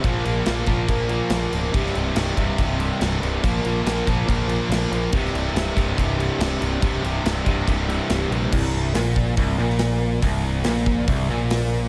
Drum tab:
CC |x-x-x-x-x-x-x-x-|x-x-x-x-x-x-x-x-|x-x-x-x-x-x-x-x-|x-x-x-x-x-x-x-x-|
HH |----------------|----------------|----------------|----------------|
SD |----o-------o---|-o--o-------o---|----o-------o---|-o--o-------o---|
BD |o-----o-o-------|o-----o-o-------|o-----o-o-------|o-----o-o-------|

CC |x-x-x-x-x-x-x-x-|x---------------|----------------|
HH |----------------|----o---o---o---|o---o---o---o---|
SD |----o-------o---|----o------oo---|----o-------o---|
BD |o-----o-o-------|o-----o-o-------|o-----o-o-------|